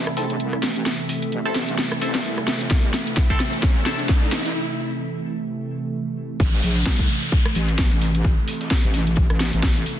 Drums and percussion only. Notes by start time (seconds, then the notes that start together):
0.07 cross-stick
0.17 open hi-hat
0.30 closed hi-hat
0.40 closed hi-hat
0.53 cross-stick
0.63 snare, open hi-hat
0.76 closed hi-hat
0.86 snare, closed hi-hat
1.09 open hi-hat
1.22 closed hi-hat
1.32 closed hi-hat
1.55 snare, open hi-hat
1.69 closed hi-hat
1.78 snare, closed hi-hat
1.92 cross-stick
2.02 open hi-hat
2.15 snare, closed hi-hat
2.25 closed hi-hat
2.38 cross-stick
2.48 snare, open hi-hat
2.61 closed hi-hat
2.71 kick, snare, closed hi-hat
2.94 snare, open hi-hat
3.07 closed hi-hat
3.17 kick, snare, closed hi-hat
3.30 kick
3.40 snare, open hi-hat
3.53 closed hi-hat
3.63 kick, snare, closed hi-hat
3.86 snare, open hi-hat
3.99 closed hi-hat
4.09 kick, snare, closed hi-hat
4.32 snare, open hi-hat
4.45 closed hi-hat
6.40 kick, closed hi-hat
6.53 snare
6.63 snare, closed hi-hat, open hi-hat
6.76 closed hi-hat
6.85 kick, snare, closed hi-hat
6.99 kick, closed hi-hat
7.09 closed hi-hat, open hi-hat
7.22 closed hi-hat
7.32 kick, closed hi-hat
7.45 cross-stick, closed hi-hat
7.55 closed hi-hat, open hi-hat
7.69 closed hi-hat
7.78 kick, snare, closed hi-hat
7.91 closed hi-hat
8.01 closed hi-hat, open hi-hat
8.15 closed hi-hat
8.25 kick, closed hi-hat
8.48 closed hi-hat, open hi-hat
8.61 snare, closed hi-hat
8.71 kick, snare, closed hi-hat
8.84 snare, closed hi-hat
8.94 snare, closed hi-hat, open hi-hat
9.07 closed hi-hat
9.16 kick, closed hi-hat
9.30 cross-stick, closed hi-hat
9.40 snare, closed hi-hat, open hi-hat
9.53 closed hi-hat
9.63 kick, snare, closed hi-hat
9.76 closed hi-hat
9.86 closed hi-hat, open hi-hat